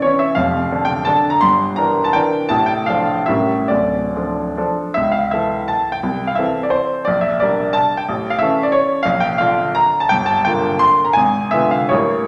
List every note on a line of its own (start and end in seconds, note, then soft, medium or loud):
0.02 0.34 E3 soft
0.02 0.34 C#4 soft
0.02 0.35 E4 medium
0.02 0.19 C#5 medium
0.19 0.36 E5 medium
0.35 0.70 F1 medium
0.35 0.70 F2 medium
0.35 0.88 F5 medium
0.71 1.04 D3 soft
0.71 1.04 D4 soft
0.71 1.04 A4 soft
0.85 1.05 G5 medium
1.05 1.39 D3 medium
1.05 1.39 D4 medium
1.05 1.39 A4 medium
1.05 1.33 A5 medium
1.30 1.41 A#5 medium
1.41 1.77 G1 medium
1.41 1.77 G2 medium
1.41 1.77 C6 medium
1.76 2.11 E3 soft
1.76 2.11 D4 soft
1.76 2.12 A#4 soft
1.76 2.05 A#5 medium
2.04 2.14 A5 medium
2.13 2.47 E3 medium
2.13 2.48 D4 medium
2.13 2.48 A#4 medium
2.13 2.50 G5 medium
2.49 2.87 A1 medium
2.49 2.86 A2 medium
2.49 2.68 A5 medium
2.66 2.87 G5 medium
2.86 3.24 F3 soft
2.86 3.24 D4 soft
2.86 3.24 A4 soft
2.86 3.26 F5 medium
3.26 3.69 A1 soft
3.26 3.69 A2 medium
3.26 3.66 G3 soft
3.26 3.66 C#4 soft
3.26 3.67 A#4 soft
3.26 3.69 E5 medium
3.68 4.14 D1 soft
3.68 4.14 D2 medium
3.68 4.57 D5 medium
4.16 4.54 F3 soft
4.16 4.54 D4 soft
4.16 4.55 A4 soft
4.57 4.93 F3 soft
4.57 4.93 D4 soft
4.57 4.93 A4 soft
4.94 5.33 C#2 medium
4.94 5.14 E5 medium
5.12 5.33 F5 medium
5.31 6.01 E3 soft
5.31 6.01 E4 soft
5.31 6.01 A4 soft
5.31 5.70 E5 medium
5.68 5.95 A5 medium
5.92 6.29 G5 medium
6.03 6.38 C2 medium
6.27 6.38 F5 medium
6.35 7.04 E3 soft
6.35 7.04 C4 soft
6.35 7.04 A4 soft
6.35 6.64 E5 medium
6.63 6.73 D5 medium
6.70 7.06 C5 medium
7.05 7.40 A#1 medium
7.05 7.23 D5 medium
7.21 7.40 E5 medium
7.40 8.04 G3 soft
7.40 8.05 D4 soft
7.40 8.05 A#4 soft
7.40 7.75 D5 medium
7.73 7.99 A5 medium
7.97 8.31 G5 medium
8.09 8.40 A1 medium
8.30 8.40 F5 medium
8.39 9.03 E3 soft
8.39 9.03 C#4 soft
8.39 9.03 A4 soft
8.39 8.64 E5 medium
8.63 8.72 D5 medium
8.72 9.06 C#5 medium
9.03 9.40 A#1 medium
9.03 9.22 F5 medium
9.20 9.40 G5 medium
9.38 10.06 D3 soft
9.38 10.07 D4 medium
9.38 10.07 F4 medium
9.38 9.76 F5 medium
9.75 10.01 A#5 medium
10.00 10.10 A5 medium
10.09 10.44 G1 medium
10.09 10.27 G5 loud
10.26 10.44 A5 medium
10.45 11.12 D3 medium
10.45 11.12 A#3 medium
10.45 11.12 F4 medium
10.45 10.81 G5 medium
10.79 11.06 C6 loud
11.05 11.14 A#5 medium
11.13 11.51 G#1 medium
11.13 11.50 G#5 medium
11.51 11.88 D3 soft
11.51 11.89 B3 soft
11.51 11.89 F4 soft
11.51 11.71 E5 medium
11.71 11.91 F5 medium
11.89 12.27 A1 medium
11.89 12.25 G3 soft
11.89 12.26 A#3 soft
11.89 12.26 E4 soft
11.89 12.26 C#5 medium